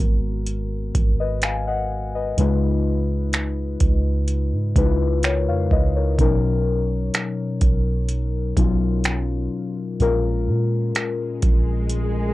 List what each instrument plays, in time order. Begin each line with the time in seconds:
Already playing: synth keys G#2 G#3 B3 F#4 A#4
0.00 808-style bass G#1, kick
0.46 closed hi-hat
0.95 808-style bass G#1, kick, closed hi-hat
1.20 synth keys B4 D#5
1.42 synth keys F5 G#5, finger snap, closed hi-hat
1.67 synth keys D#5 F#5
2.15 synth keys B4 D#5
2.38 808-style bass C#2, synth keys C#3 G#3 D#4 F4 B4, closed hi-hat
3.33 finger snap, closed hi-hat
3.80 808-style bass C#2, kick, closed hi-hat
4.28 closed hi-hat
4.52 808-style bass G#2
4.76 808-style bass C#2, synth keys C#3 G#3 D#4 E4 B4, kick, closed hi-hat
4.84 synth keys F4
5.23 synth keys A#4 C#5, finger snap, closed hi-hat
5.47 808-style bass F2, synth keys C#5 F5
5.71 808-style bass C#2, synth keys B4 D#5, kick
5.96 synth keys A#4 C#5
6.19 808-style bass B1, synth keys B2 F#3 C#4 D#4 A#4, kick, closed hi-hat
7.14 finger snap, closed hi-hat
7.61 808-style bass B1, kick, closed hi-hat
8.09 closed hi-hat
8.56 808-style bass B1, synth keys B2 F#3 C#4 D#4 F4, kick, closed hi-hat
9.04 finger snap, closed hi-hat
9.99 808-style bass A#1, synth keys A#2 G#3 C#4 F4 A#4, closed hi-hat, swell
10.47 808-style bass A#2
10.95 finger snap, closed hi-hat
11.42 808-style bass A#1, kick, closed hi-hat
11.89 closed hi-hat